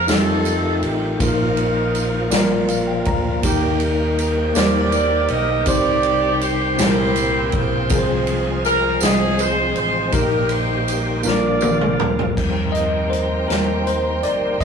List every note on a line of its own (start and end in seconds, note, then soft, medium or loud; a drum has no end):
0.00 0.10 C4 medium
0.00 0.08 F4 medium
0.00 0.10 G#4 medium
0.00 0.10 C5 medium
0.07 0.79 F2 loud
0.07 1.18 D#3 medium
0.07 1.18 G3 medium
0.07 1.19 A3 medium
0.07 1.16 C4 medium
0.07 0.86 D#4 medium
0.07 1.16 D#4 medium
0.07 1.18 F4 medium
0.07 0.86 F4 medium
0.07 0.87 G4 medium
0.07 0.83 A4 loud
0.07 0.87 A4 medium
0.07 snare medium
0.07 ride medium
0.07 tambourine medium
0.45 ride soft
0.45 tambourine medium
0.82 1.17 A1 medium
0.82 1.21 G4 medium
0.82 ride soft
1.19 2.28 A#1 medium
1.19 2.27 A#2 medium
1.19 2.31 D#3 medium
1.19 2.31 F3 medium
1.19 1.97 A#3 medium
1.19 3.41 A#3 medium
1.19 1.98 D#4 medium
1.19 2.66 D#4 medium
1.19 1.98 F4 medium
1.19 3.41 F4 medium
1.19 2.66 F4 medium
1.19 1.27 G#4 medium
1.19 2.70 A#4 medium
1.19 kick medium
1.19 ride medium
1.19 tambourine medium
1.28 2.02 A#4 medium
1.57 ride soft
1.95 ride soft
1.95 tambourine soft
2.30 3.02 A#1 loud
2.30 3.39 A#2 medium
2.30 3.43 F3 medium
2.30 3.09 A#3 medium
2.30 3.10 F4 medium
2.30 3.11 A#4 medium
2.30 3.09 D5 medium
2.30 snare loud
2.30 ride medium
2.30 tambourine medium
2.69 2.86 F5 medium
2.69 ride soft
2.69 tambourine medium
2.88 3.05 G5 medium
3.05 3.41 D2 medium
3.05 3.41 A#5 medium
3.05 kick medium
3.05 ride soft
3.42 4.51 D#2 loud
3.42 4.51 D#3 medium
3.42 4.21 A#3 medium
3.42 4.52 A#3 medium
3.42 5.66 A#3 medium
3.42 4.22 D#4 medium
3.42 4.52 D#4 medium
3.42 4.22 G4 medium
3.42 3.79 G4 medium
3.42 4.22 A#4 medium
3.42 kick loud
3.42 ride medium
3.42 tambourine medium
3.46 6.77 D#3 medium
3.46 6.77 G3 medium
3.46 7.88 G5 medium
3.80 4.16 A#4 medium
3.80 ride soft
4.17 4.35 A#4 loud
4.17 ride soft
4.17 tambourine soft
4.36 4.55 C5 medium
4.54 5.26 D#2 loud
4.54 5.33 A#3 medium
4.54 5.34 D#4 medium
4.54 5.34 G4 medium
4.54 5.63 G4 medium
4.54 5.64 A#4 medium
4.54 5.34 C5 medium
4.54 5.30 D5 loud
4.54 snare loud
4.54 ride medium
4.54 tambourine medium
4.92 ride soft
4.92 tambourine medium
5.28 5.64 B1 medium
5.28 5.67 D#5 loud
5.28 ride soft
5.66 6.75 C2 loud
5.66 6.74 C3 medium
5.66 6.44 C4 medium
5.66 7.88 C4 medium
5.66 6.45 D#4 medium
5.66 6.45 G4 medium
5.66 6.75 G4 medium
5.66 6.46 C5 medium
5.66 6.37 D5 loud
5.66 kick loud
5.66 ride medium
5.66 tambourine medium
6.03 ride soft
6.41 6.79 C5 loud
6.41 ride soft
6.41 tambourine soft
6.76 7.49 C2 loud
6.76 7.86 A#2 medium
6.76 7.89 A#3 medium
6.76 7.56 C4 medium
6.76 7.56 E4 medium
6.76 7.87 E4 medium
6.76 7.57 G4 medium
6.76 6.86 A4 medium
6.76 7.50 C5 loud
6.76 snare loud
6.76 ride medium
6.76 tambourine medium
6.81 7.87 G4 medium
6.86 7.61 A#4 medium
7.16 ride soft
7.16 tambourine medium
7.52 7.87 B1 medium
7.52 8.34 C5 loud
7.52 kick medium
7.52 ride soft
7.56 8.62 F4 medium
7.56 8.62 G#4 medium
7.90 8.98 C2 loud
7.90 8.98 C3 medium
7.90 10.11 F3 medium
7.90 10.12 G#3 medium
7.90 8.68 C4 medium
7.90 10.12 C4 medium
7.90 8.68 F4 medium
7.90 8.69 G#4 medium
7.90 10.12 G#4 medium
7.90 7.98 A#4 medium
7.90 kick loud
7.90 ride medium
7.90 tambourine medium
7.98 8.72 C5 medium
8.27 ride soft
8.65 8.99 A#4 loud
8.65 ride soft
8.65 tambourine soft
9.01 9.73 C2 medium
9.01 9.79 C4 medium
9.01 9.80 F4 medium
9.01 9.80 G#4 medium
9.01 9.40 G#4 medium
9.01 9.81 D#5 medium
9.01 snare loud
9.01 ride medium
9.01 tambourine medium
9.39 9.75 C5 loud
9.39 ride soft
9.39 tambourine medium
9.76 10.11 A1 medium
9.76 10.11 C5 medium
9.76 ride soft
10.11 11.21 A#1 loud
10.11 11.21 A#2 medium
10.11 11.24 D#3 medium
10.11 11.23 G3 medium
10.11 10.91 A#3 medium
10.11 12.35 A#3 medium
10.11 10.91 D#4 medium
10.11 10.50 D#4 medium
10.11 11.23 G4 medium
10.11 10.92 G4 medium
10.11 10.50 G4 medium
10.11 10.51 A#4 medium
10.11 10.92 A#4 medium
10.11 kick loud
10.11 ride medium
10.11 tambourine medium
10.49 11.21 D#4 medium
10.49 11.22 G4 medium
10.49 11.25 C5 loud
10.49 ride soft
10.88 ride soft
10.88 tambourine soft
11.23 11.96 A#1 loud
11.23 12.33 A#2 medium
11.23 12.35 D3 medium
11.23 12.35 F3 medium
11.23 12.02 A#3 medium
11.23 12.03 D4 medium
11.23 12.35 F4 medium
11.23 12.03 F4 medium
11.23 12.04 A#4 medium
11.23 tambourine medium
11.27 12.34 F4 medium
11.27 12.34 A#4 medium
11.27 12.10 D5 medium
11.27 snare medium
11.61 high tom medium
11.61 tambourine medium
11.81 mid tom medium
12.00 12.34 D2 medium
12.00 mid tom loud
12.19 floor tom medium
12.35 13.45 D#2 medium
12.35 14.58 D#3 medium
12.35 14.55 F3 soft
12.35 14.56 G3 soft
12.35 14.58 A#3 soft
12.35 14.56 C4 soft
12.35 14.64 C4 medium
12.35 14.58 G4 medium
12.35 14.58 G5 medium
12.35 14.58 A#5 medium
12.35 14.64 C6 medium
12.35 kick medium
12.35 crash medium
12.72 13.12 D#5 medium
12.72 closed hi-hat soft
13.10 13.49 C5 medium
13.10 closed hi-hat soft
13.48 14.19 D#2 medium
13.48 13.87 A#4 medium
13.48 snare medium
13.48 closed hi-hat medium
13.87 14.25 C5 medium
13.87 closed hi-hat soft
14.23 14.62 D5 medium
14.23 closed hi-hat soft
14.59 14.64 G#1 medium
14.59 14.64 D#3 medium
14.59 14.64 F3 soft
14.59 14.64 G#3 medium
14.59 14.64 A#3 soft
14.59 14.64 F4 medium
14.59 14.64 D#5 medium
14.59 kick medium